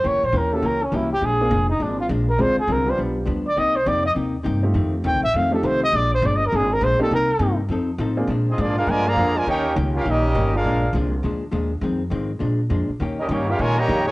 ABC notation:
X:1
M:4/4
L:1/8
Q:"Swing" 1/4=204
K:Bbmix
V:1 name="Trumpet"
^c =c B =A B ^C =E G | A3 E D F z B | c A B c z3 d | e c d e z4 |
z2 g =e f =A c _e | d c (3d e B A B c =A | B3 z4 z | [K:Bb] z8 |
z8 | z8 | z8 | z8 |]
V:2 name="Trumpet section"
z8 | z8 | z8 | z8 |
z8 | z8 | z8 | [K:Bb] z [CF_Ae] [B,FAd] [DABf] [FBd_a] [Adfb]2 [FBda] |
[EB_dg]2 z [_DGBf] [DGBe]3 [=D_ABf]- | [D_ABf]2 z6 | z8 | z [_DGBe] [B,EG_d] [DGBf] [FBd_a] [Gdeb]2 [FBda] |]
V:3 name="Grand piano"
z3 [B,^C=E_G=G] z2 [B,CE_G=G] z | z [B,CDFA] z6 | [A,CDFA] z2 [G,_CDFG]3 z2 | z6 z [=A,CEFG]- |
[=A,CEFG]2 z3 [A,CEFG]3 | z6 z [B,CDEG] | z6 z [B,CDFA] | [K:Bb] z8 |
z8 | z8 | z8 | z8 |]
V:4 name="Trombone section"
z8 | z8 | z8 | z8 |
z8 | z8 | z8 | [K:Bb] z E [F,_A,D] [A,DF] [D,F,A,] [D,F,B,]2 [D,F,A,] |
[B,_DG]2 z F [G,B,E]3 [_A,=DF]- | [_A,DF]2 z6 | z8 | z [G,B,E] [G,B,_D] F _A, [_D,G,B,]2 A, |]
V:5 name="Hollow-body jazz guitar" clef=bass
[=E,B,^CG] z [E,B,CG] z [E,B,CG] z [E,B,CG] z | [B,,F,A,D] z [B,,F,A,D] z [B,,F,A,D] z [B,,F,A,D] z | [D,A,CF] z [D,A,CF] z [G,,F,=B,D] z [G,,F,B,D] z | [C,B,EG] z [C,B,EG] z [C,B,EG] z [C,B,EG] z |
[F,,E,=A,C] z [F,,E,A,C] z [F,,E,A,C] z [F,,E,A,C] z | [B,,F,A,D] z [B,,F,A,D] z [B,,F,A,D] z [B,,F,A,D] z | [C,B,EG] z [C,B,EG] z [F,CE=A] z [F,CEA] z | [K:Bb] [B,,F,_A,D] z [B,,F,A,D] z [B,,F,A,D] z [B,,F,A,D] z |
[E,B,_DG] z [E,B,DG] z [E,B,DG] z [E,B,DG] z | [B,,F,_A,D] z [B,,F,A,D] z [B,,F,A,D] z [B,,F,A,D] z | [F,,E,_A,C] z [F,,E,A,C] z [B,,F,A,D] z [B,,F,A,D] z | [E,B,_DG] z [E,B,DG] z [E,B,DG] z [E,B,DG] z |]
V:6 name="Upright bass" clef=bass
(3=E,, ^C,, B,,, _E,,2 C,,2 =C,,2 | B,,,2 F,,,2 A,,,2 B,,,2 | D,, z C,,2 =B,,,2 D,,2 | C,,2 F,,2 E,,2 G,,2 |
F,,2 (3E,, C,, =A,,, F,,2 C,,2 | B,,,2 G,,,2 A,,,2 B,,, z | C,,2 G,,2 F,,2 =A,,2 | [K:Bb] B,,2 _A,,2 G,,2 F,,2 |
E,,2 _D,,2 B,,,2 G,,,2 | B,,,2 C,,2 D,,2 E,,2 | F,,2 _A,,2 B,,2 F,, z | E,,2 G,,2 B,,2 F,,2 |]